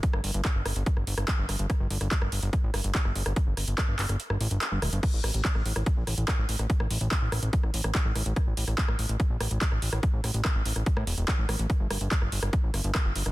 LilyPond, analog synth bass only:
\new Staff \with { instrumentName = "Analog synth bass" } { \clef bass \time 4/4 \tempo 4 = 144 r16 g,,16 g,,16 g,,16 r16 g,,16 g,,16 g,,16 r16 g,,16 g,,16 g,,16 r16 g,,16 g,,16 g,,16 | r16 g,,16 g,,16 g,,16 r16 g,,16 g,,16 g,,16 r16 a,,16 g,,16 g,,16 r16 g,,16 g,,16 g,,16 | r16 g,,16 g,,16 g,,16 r16 g,,16 g,,16 g,,16 r16 g,,16 a,,16 g,,16 r16 g,,16 d,,16 g,,16 | r16 a,,16 a,,16 a,,16 r16 a,,16 a,,16 a,,16 r16 bes,,16 a,,16 a,,16 r16 a,,16 a,,16 a,,16 |
r16 a,,16 a,,16 a,,16 r16 a,,16 a,,16 a,,16 r16 a,,16 a,,16 a,,16 r16 a,,16 a,,16 a,,16 | r16 a,,16 a,,16 a,,16 r16 a,,16 a,,16 a,,16 r16 bes,,16 a,,16 a,,16 r16 a,,16 a,,16 a,,16 | r16 a,,16 a,,16 a,,16 r16 a,,16 a,,16 a,,16 r16 a,16 e,,16 e,,16 r16 a,,16 a,,16 a,,16 | r16 g,,16 g,,16 g,,16 r16 g,,16 g,,16 g,,16 r16 a,,16 g,,16 g,,16 r16 g,,16 g,,16 g,,16 | }